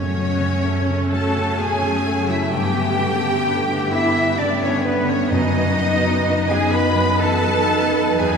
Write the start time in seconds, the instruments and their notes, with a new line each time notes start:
Already playing: timpani F#2, double bass section F#2, grand piano F#2 C#3, harp F#2, french horn section A3 C#4, viola section A3 C#4, cello section C#4, violin section C#5, flute C#5
0.01 harp F#3
0.17 grand piano F#3
0.33 harp F#4
0.40 grand piano C#3
0.64 grand piano A3, harp A3
0.89 grand piano C#3
0.97 harp C#5
1.12 grand piano F#3, cello section A4, flute A5, violin section A5
1.28 harp F#4
1.36 grand piano C#3
1.59 grand piano B2, harp A3, cello section G#4, violin section G#5, flute G#5
1.82 grand piano C#3
1.91 harp F#3
2.06 grand piano A3
2.23 harp C#3
2.28 grand piano F#3, cello section E4, violin section E5, flute E5
2.51 grand piano G2, double bass section G2, harp G2, viola section B3, french horn section B3, cello section G4, violin section G5, flute G5
2.75 grand piano D3
2.84 harp B3
2.98 grand piano B3
3.15 harp A4
3.22 grand piano D3
3.46 grand piano D4, harp B4
3.69 grand piano D3
3.77 harp D5
3.91 grand piano B3, cello section E4, flute E5, violin section E5
4.08 harp B4
4.15 grand piano D3
4.38 grand piano C#3, cello section D4, harp D4, flute D5, violin section D5
4.61 grand piano D3, cello section C#4, violin section C#5, flute C#5
4.70 harp B3
4.83 cello section B3, grand piano D4, violin section B4, flute B4
5.01 harp D3
5.07 grand piano B3, cello section C#4, violin section C#5, flute C#5
5.30 double bass section F#2, grand piano F#2, timpani F#2, harp F#2, french horn section B3 D#5, cello section D#4, viola section B4, violin section D#5, flute D#5
5.56 grand piano F#3
5.64 harp B3
5.78 grand piano B3
5.95 harp B4
6.00 grand piano F#3
6.24 grand piano D#4, harp D#4
6.49 grand piano F#3, cello section G#4, violin section G#5, flute G#5
6.58 harp D#5
6.72 grand piano B3, cello section B4, violin section B5, flute B5
6.90 harp B4
6.96 grand piano F#3
7.21 grand piano E3, harp D#4, cello section A4, violin section A5, flute A5
7.44 grand piano F#3
7.54 harp B3
7.69 grand piano D#4
7.87 harp F#3
7.94 grand piano B3
8.18 grand piano E2, harp E2, double bass section E2, viola section D#4, cello section G#4, violin section G#5, flute G#5